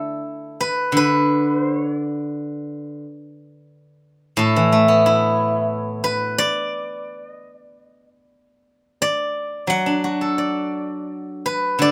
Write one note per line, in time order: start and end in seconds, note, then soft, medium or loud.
0.00 0.19 D3 soft
0.00 0.20 D4 soft
0.00 0.58 E4 soft
0.00 0.95 A4 soft
0.00 0.16 D5 medium
0.61 0.97 B4 medium
0.92 3.03 D3 soft
0.97 1.50 B4 medium
1.50 1.76 C5 medium
1.76 2.03 C#5 medium
2.03 4.35 D5 medium
4.37 6.36 A2 medium
4.37 6.58 A4 soft
4.56 5.88 E3 soft
4.72 6.04 A3 soft
4.88 6.20 B3 soft
5.06 6.37 E4 soft
6.04 8.08 B4 medium
6.38 7.30 D5 medium
7.30 7.55 D#5 medium
7.55 7.82 D5 medium
7.82 8.07 D#5 medium
8.07 8.98 D5 medium
9.02 10.38 D5 medium
9.67 11.80 F#3 soft
9.67 11.30 F#5 medium
9.86 11.28 D4 soft
10.04 11.46 F#4 soft
10.21 11.64 A4 soft
10.38 11.80 D5 soft
11.46 11.91 B4 medium
11.79 11.91 D3 soft
11.79 11.91 D5 medium